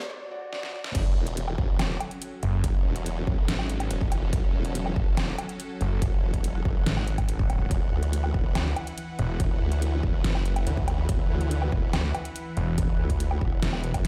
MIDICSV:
0, 0, Header, 1, 8, 480
1, 0, Start_track
1, 0, Key_signature, 3, "minor"
1, 0, Tempo, 422535
1, 1078, Time_signature, 4, 2, 24, 8
1, 15988, End_track
2, 0, Start_track
2, 0, Title_t, "Felt piano"
2, 0, Program_c, 0, 0
2, 117, Note_on_c, 0, 74, 103
2, 338, Note_off_c, 0, 74, 0
2, 357, Note_on_c, 0, 74, 108
2, 578, Note_off_c, 0, 74, 0
2, 597, Note_on_c, 0, 74, 108
2, 818, Note_off_c, 0, 74, 0
2, 837, Note_on_c, 0, 74, 103
2, 1058, Note_off_c, 0, 74, 0
2, 15988, End_track
3, 0, Start_track
3, 0, Title_t, "Supersaw synth"
3, 0, Program_c, 1, 81
3, 1077, Note_on_c, 1, 54, 86
3, 1078, Note_on_c, 1, 61, 80
3, 1078, Note_on_c, 1, 69, 77
3, 1078, Note_on_c, 1, 78, 94
3, 8712, Note_off_c, 1, 54, 0
3, 8712, Note_off_c, 1, 61, 0
3, 8712, Note_off_c, 1, 69, 0
3, 8757, Note_on_c, 1, 52, 84
3, 8757, Note_on_c, 1, 64, 78
3, 8757, Note_on_c, 1, 71, 78
3, 15988, Note_off_c, 1, 52, 0
3, 15988, Note_off_c, 1, 64, 0
3, 15988, Note_off_c, 1, 71, 0
3, 15988, Note_off_c, 1, 78, 0
3, 15988, End_track
4, 0, Start_track
4, 0, Title_t, "Detuned saw bass"
4, 0, Program_c, 2, 39
4, 2758, Note_on_c, 2, 30, 98
4, 2979, Note_off_c, 2, 30, 0
4, 3957, Note_on_c, 2, 32, 95
4, 4418, Note_off_c, 2, 32, 0
4, 6597, Note_on_c, 2, 30, 100
4, 6819, Note_off_c, 2, 30, 0
4, 7797, Note_on_c, 2, 32, 98
4, 8738, Note_off_c, 2, 32, 0
4, 10437, Note_on_c, 2, 28, 99
4, 10658, Note_off_c, 2, 28, 0
4, 11638, Note_on_c, 2, 30, 96
4, 12099, Note_off_c, 2, 30, 0
4, 14277, Note_on_c, 2, 28, 100
4, 14498, Note_off_c, 2, 28, 0
4, 15477, Note_on_c, 2, 28, 96
4, 15819, Note_off_c, 2, 28, 0
4, 15988, End_track
5, 0, Start_track
5, 0, Title_t, "Wobble bass"
5, 0, Program_c, 3, 39
5, 1078, Note_on_c, 3, 30, 103
5, 1299, Note_off_c, 3, 30, 0
5, 1318, Note_on_c, 3, 28, 94
5, 1779, Note_off_c, 3, 28, 0
5, 1798, Note_on_c, 3, 30, 97
5, 2019, Note_off_c, 3, 30, 0
5, 2038, Note_on_c, 3, 28, 96
5, 2259, Note_off_c, 3, 28, 0
5, 2998, Note_on_c, 3, 30, 97
5, 3219, Note_off_c, 3, 30, 0
5, 3238, Note_on_c, 3, 28, 98
5, 3699, Note_off_c, 3, 28, 0
5, 3718, Note_on_c, 3, 30, 98
5, 3939, Note_off_c, 3, 30, 0
5, 4437, Note_on_c, 3, 28, 99
5, 4898, Note_off_c, 3, 28, 0
5, 4918, Note_on_c, 3, 30, 102
5, 5139, Note_off_c, 3, 30, 0
5, 5157, Note_on_c, 3, 28, 98
5, 5618, Note_off_c, 3, 28, 0
5, 5638, Note_on_c, 3, 30, 96
5, 5859, Note_off_c, 3, 30, 0
5, 5877, Note_on_c, 3, 28, 99
5, 6098, Note_off_c, 3, 28, 0
5, 6838, Note_on_c, 3, 30, 104
5, 7059, Note_off_c, 3, 30, 0
5, 7077, Note_on_c, 3, 28, 98
5, 7538, Note_off_c, 3, 28, 0
5, 7557, Note_on_c, 3, 30, 94
5, 7779, Note_off_c, 3, 30, 0
5, 8758, Note_on_c, 3, 28, 102
5, 8979, Note_off_c, 3, 28, 0
5, 8997, Note_on_c, 3, 38, 101
5, 9458, Note_off_c, 3, 38, 0
5, 9478, Note_on_c, 3, 28, 98
5, 9699, Note_off_c, 3, 28, 0
5, 9717, Note_on_c, 3, 38, 97
5, 9938, Note_off_c, 3, 38, 0
5, 10678, Note_on_c, 3, 28, 100
5, 10899, Note_off_c, 3, 28, 0
5, 10917, Note_on_c, 3, 38, 99
5, 11378, Note_off_c, 3, 38, 0
5, 11398, Note_on_c, 3, 28, 98
5, 11619, Note_off_c, 3, 28, 0
5, 12117, Note_on_c, 3, 38, 98
5, 12578, Note_off_c, 3, 38, 0
5, 12598, Note_on_c, 3, 28, 102
5, 12819, Note_off_c, 3, 28, 0
5, 12837, Note_on_c, 3, 38, 96
5, 13298, Note_off_c, 3, 38, 0
5, 13317, Note_on_c, 3, 28, 95
5, 13539, Note_off_c, 3, 28, 0
5, 13557, Note_on_c, 3, 38, 98
5, 13778, Note_off_c, 3, 38, 0
5, 14518, Note_on_c, 3, 28, 102
5, 14739, Note_off_c, 3, 28, 0
5, 14758, Note_on_c, 3, 38, 98
5, 15219, Note_off_c, 3, 38, 0
5, 15238, Note_on_c, 3, 28, 101
5, 15459, Note_off_c, 3, 28, 0
5, 15839, Note_on_c, 3, 30, 97
5, 15958, Note_off_c, 3, 30, 0
5, 15988, End_track
6, 0, Start_track
6, 0, Title_t, "Riser"
6, 0, Program_c, 4, 103
6, 0, Note_on_c, 4, 60, 75
6, 117, Note_off_c, 4, 60, 0
6, 15988, End_track
7, 0, Start_track
7, 0, Title_t, "Swell"
7, 0, Program_c, 5, 103
7, 117, Note_on_c, 5, 60, 79
7, 1077, Note_off_c, 5, 60, 0
7, 15988, End_track
8, 0, Start_track
8, 0, Title_t, "Drums"
8, 598, Note_on_c, 9, 38, 63
8, 711, Note_off_c, 9, 38, 0
8, 719, Note_on_c, 9, 38, 62
8, 832, Note_off_c, 9, 38, 0
8, 959, Note_on_c, 9, 38, 89
8, 1072, Note_off_c, 9, 38, 0
8, 1078, Note_on_c, 9, 36, 117
8, 1078, Note_on_c, 9, 42, 86
8, 1078, Note_on_c, 9, 49, 107
8, 1191, Note_off_c, 9, 36, 0
8, 1191, Note_off_c, 9, 42, 0
8, 1191, Note_off_c, 9, 49, 0
8, 1439, Note_on_c, 9, 42, 57
8, 1552, Note_off_c, 9, 42, 0
8, 1558, Note_on_c, 9, 42, 83
8, 1671, Note_off_c, 9, 42, 0
8, 1679, Note_on_c, 9, 77, 62
8, 1792, Note_off_c, 9, 77, 0
8, 1798, Note_on_c, 9, 36, 107
8, 1911, Note_off_c, 9, 36, 0
8, 2038, Note_on_c, 9, 38, 125
8, 2038, Note_on_c, 9, 42, 83
8, 2038, Note_on_c, 9, 77, 79
8, 2151, Note_off_c, 9, 38, 0
8, 2151, Note_off_c, 9, 42, 0
8, 2151, Note_off_c, 9, 77, 0
8, 2278, Note_on_c, 9, 42, 55
8, 2278, Note_on_c, 9, 77, 79
8, 2391, Note_off_c, 9, 42, 0
8, 2391, Note_off_c, 9, 77, 0
8, 2400, Note_on_c, 9, 42, 55
8, 2513, Note_off_c, 9, 42, 0
8, 2518, Note_on_c, 9, 42, 84
8, 2631, Note_off_c, 9, 42, 0
8, 2758, Note_on_c, 9, 42, 56
8, 2871, Note_off_c, 9, 42, 0
8, 2998, Note_on_c, 9, 36, 124
8, 2998, Note_on_c, 9, 42, 83
8, 3111, Note_off_c, 9, 36, 0
8, 3111, Note_off_c, 9, 42, 0
8, 3359, Note_on_c, 9, 42, 56
8, 3472, Note_off_c, 9, 42, 0
8, 3478, Note_on_c, 9, 42, 85
8, 3591, Note_off_c, 9, 42, 0
8, 3718, Note_on_c, 9, 36, 109
8, 3831, Note_off_c, 9, 36, 0
8, 3958, Note_on_c, 9, 38, 127
8, 3958, Note_on_c, 9, 42, 86
8, 4071, Note_off_c, 9, 38, 0
8, 4071, Note_off_c, 9, 42, 0
8, 4079, Note_on_c, 9, 77, 59
8, 4193, Note_off_c, 9, 77, 0
8, 4198, Note_on_c, 9, 42, 54
8, 4311, Note_off_c, 9, 42, 0
8, 4319, Note_on_c, 9, 42, 55
8, 4319, Note_on_c, 9, 77, 60
8, 4432, Note_off_c, 9, 42, 0
8, 4432, Note_off_c, 9, 77, 0
8, 4437, Note_on_c, 9, 42, 83
8, 4551, Note_off_c, 9, 42, 0
8, 4559, Note_on_c, 9, 36, 112
8, 4672, Note_off_c, 9, 36, 0
8, 4678, Note_on_c, 9, 42, 58
8, 4678, Note_on_c, 9, 77, 62
8, 4791, Note_off_c, 9, 42, 0
8, 4791, Note_off_c, 9, 77, 0
8, 4917, Note_on_c, 9, 42, 83
8, 4918, Note_on_c, 9, 36, 122
8, 5031, Note_off_c, 9, 36, 0
8, 5031, Note_off_c, 9, 42, 0
8, 5279, Note_on_c, 9, 42, 57
8, 5392, Note_off_c, 9, 42, 0
8, 5398, Note_on_c, 9, 42, 85
8, 5511, Note_off_c, 9, 42, 0
8, 5519, Note_on_c, 9, 77, 60
8, 5633, Note_off_c, 9, 77, 0
8, 5638, Note_on_c, 9, 36, 111
8, 5751, Note_off_c, 9, 36, 0
8, 5877, Note_on_c, 9, 38, 127
8, 5877, Note_on_c, 9, 42, 82
8, 5877, Note_on_c, 9, 77, 79
8, 5991, Note_off_c, 9, 38, 0
8, 5991, Note_off_c, 9, 42, 0
8, 5991, Note_off_c, 9, 77, 0
8, 6117, Note_on_c, 9, 42, 54
8, 6117, Note_on_c, 9, 77, 75
8, 6231, Note_off_c, 9, 42, 0
8, 6231, Note_off_c, 9, 77, 0
8, 6239, Note_on_c, 9, 42, 53
8, 6352, Note_off_c, 9, 42, 0
8, 6358, Note_on_c, 9, 42, 83
8, 6472, Note_off_c, 9, 42, 0
8, 6598, Note_on_c, 9, 42, 56
8, 6711, Note_off_c, 9, 42, 0
8, 6838, Note_on_c, 9, 36, 126
8, 6838, Note_on_c, 9, 42, 79
8, 6951, Note_off_c, 9, 36, 0
8, 6951, Note_off_c, 9, 42, 0
8, 7199, Note_on_c, 9, 36, 62
8, 7199, Note_on_c, 9, 42, 53
8, 7313, Note_off_c, 9, 36, 0
8, 7313, Note_off_c, 9, 42, 0
8, 7318, Note_on_c, 9, 42, 80
8, 7431, Note_off_c, 9, 42, 0
8, 7558, Note_on_c, 9, 36, 110
8, 7671, Note_off_c, 9, 36, 0
8, 7798, Note_on_c, 9, 38, 126
8, 7798, Note_on_c, 9, 42, 81
8, 7911, Note_off_c, 9, 38, 0
8, 7911, Note_off_c, 9, 42, 0
8, 7918, Note_on_c, 9, 77, 58
8, 8032, Note_off_c, 9, 77, 0
8, 8037, Note_on_c, 9, 42, 53
8, 8151, Note_off_c, 9, 42, 0
8, 8159, Note_on_c, 9, 36, 63
8, 8159, Note_on_c, 9, 42, 52
8, 8159, Note_on_c, 9, 77, 61
8, 8272, Note_off_c, 9, 36, 0
8, 8272, Note_off_c, 9, 42, 0
8, 8272, Note_off_c, 9, 77, 0
8, 8277, Note_on_c, 9, 42, 79
8, 8391, Note_off_c, 9, 42, 0
8, 8399, Note_on_c, 9, 36, 110
8, 8513, Note_off_c, 9, 36, 0
8, 8517, Note_on_c, 9, 42, 53
8, 8517, Note_on_c, 9, 77, 62
8, 8631, Note_off_c, 9, 42, 0
8, 8631, Note_off_c, 9, 77, 0
8, 8757, Note_on_c, 9, 42, 79
8, 8758, Note_on_c, 9, 36, 116
8, 8871, Note_off_c, 9, 36, 0
8, 8871, Note_off_c, 9, 42, 0
8, 9119, Note_on_c, 9, 42, 53
8, 9232, Note_off_c, 9, 42, 0
8, 9238, Note_on_c, 9, 42, 78
8, 9351, Note_off_c, 9, 42, 0
8, 9358, Note_on_c, 9, 77, 62
8, 9472, Note_off_c, 9, 77, 0
8, 9477, Note_on_c, 9, 36, 105
8, 9591, Note_off_c, 9, 36, 0
8, 9717, Note_on_c, 9, 38, 117
8, 9717, Note_on_c, 9, 42, 78
8, 9717, Note_on_c, 9, 77, 82
8, 9830, Note_off_c, 9, 38, 0
8, 9830, Note_off_c, 9, 42, 0
8, 9830, Note_off_c, 9, 77, 0
8, 9957, Note_on_c, 9, 42, 51
8, 9957, Note_on_c, 9, 77, 81
8, 10071, Note_off_c, 9, 42, 0
8, 10071, Note_off_c, 9, 77, 0
8, 10078, Note_on_c, 9, 42, 49
8, 10192, Note_off_c, 9, 42, 0
8, 10197, Note_on_c, 9, 42, 76
8, 10310, Note_off_c, 9, 42, 0
8, 10437, Note_on_c, 9, 42, 53
8, 10550, Note_off_c, 9, 42, 0
8, 10677, Note_on_c, 9, 42, 75
8, 10678, Note_on_c, 9, 36, 119
8, 10791, Note_off_c, 9, 36, 0
8, 10791, Note_off_c, 9, 42, 0
8, 11038, Note_on_c, 9, 42, 52
8, 11152, Note_off_c, 9, 42, 0
8, 11157, Note_on_c, 9, 42, 77
8, 11271, Note_off_c, 9, 42, 0
8, 11398, Note_on_c, 9, 36, 104
8, 11511, Note_off_c, 9, 36, 0
8, 11637, Note_on_c, 9, 38, 121
8, 11637, Note_on_c, 9, 42, 75
8, 11751, Note_off_c, 9, 38, 0
8, 11751, Note_off_c, 9, 42, 0
8, 11759, Note_on_c, 9, 77, 63
8, 11872, Note_off_c, 9, 77, 0
8, 11877, Note_on_c, 9, 42, 51
8, 11991, Note_off_c, 9, 42, 0
8, 11998, Note_on_c, 9, 42, 51
8, 11998, Note_on_c, 9, 77, 64
8, 12112, Note_off_c, 9, 42, 0
8, 12112, Note_off_c, 9, 77, 0
8, 12117, Note_on_c, 9, 42, 78
8, 12231, Note_off_c, 9, 42, 0
8, 12239, Note_on_c, 9, 36, 105
8, 12353, Note_off_c, 9, 36, 0
8, 12357, Note_on_c, 9, 42, 52
8, 12357, Note_on_c, 9, 77, 68
8, 12471, Note_off_c, 9, 42, 0
8, 12471, Note_off_c, 9, 77, 0
8, 12597, Note_on_c, 9, 42, 81
8, 12598, Note_on_c, 9, 36, 116
8, 12711, Note_off_c, 9, 36, 0
8, 12711, Note_off_c, 9, 42, 0
8, 12959, Note_on_c, 9, 42, 53
8, 13072, Note_off_c, 9, 42, 0
8, 13077, Note_on_c, 9, 42, 78
8, 13191, Note_off_c, 9, 42, 0
8, 13199, Note_on_c, 9, 77, 67
8, 13312, Note_off_c, 9, 77, 0
8, 13318, Note_on_c, 9, 36, 102
8, 13431, Note_off_c, 9, 36, 0
8, 13557, Note_on_c, 9, 38, 116
8, 13557, Note_on_c, 9, 42, 78
8, 13557, Note_on_c, 9, 77, 87
8, 13671, Note_off_c, 9, 38, 0
8, 13671, Note_off_c, 9, 42, 0
8, 13671, Note_off_c, 9, 77, 0
8, 13797, Note_on_c, 9, 42, 52
8, 13797, Note_on_c, 9, 77, 82
8, 13911, Note_off_c, 9, 42, 0
8, 13911, Note_off_c, 9, 77, 0
8, 13919, Note_on_c, 9, 42, 52
8, 14032, Note_off_c, 9, 42, 0
8, 14037, Note_on_c, 9, 42, 78
8, 14151, Note_off_c, 9, 42, 0
8, 14277, Note_on_c, 9, 42, 54
8, 14391, Note_off_c, 9, 42, 0
8, 14517, Note_on_c, 9, 42, 84
8, 14518, Note_on_c, 9, 36, 116
8, 14631, Note_off_c, 9, 36, 0
8, 14631, Note_off_c, 9, 42, 0
8, 14879, Note_on_c, 9, 36, 58
8, 14879, Note_on_c, 9, 42, 55
8, 14993, Note_off_c, 9, 36, 0
8, 14993, Note_off_c, 9, 42, 0
8, 14998, Note_on_c, 9, 42, 85
8, 15112, Note_off_c, 9, 42, 0
8, 15120, Note_on_c, 9, 77, 65
8, 15233, Note_off_c, 9, 77, 0
8, 15238, Note_on_c, 9, 36, 102
8, 15351, Note_off_c, 9, 36, 0
8, 15478, Note_on_c, 9, 38, 117
8, 15478, Note_on_c, 9, 42, 84
8, 15592, Note_off_c, 9, 38, 0
8, 15592, Note_off_c, 9, 42, 0
8, 15599, Note_on_c, 9, 77, 62
8, 15713, Note_off_c, 9, 77, 0
8, 15718, Note_on_c, 9, 42, 54
8, 15832, Note_off_c, 9, 42, 0
8, 15839, Note_on_c, 9, 36, 59
8, 15839, Note_on_c, 9, 42, 53
8, 15839, Note_on_c, 9, 77, 62
8, 15953, Note_off_c, 9, 36, 0
8, 15953, Note_off_c, 9, 42, 0
8, 15953, Note_off_c, 9, 77, 0
8, 15988, End_track
0, 0, End_of_file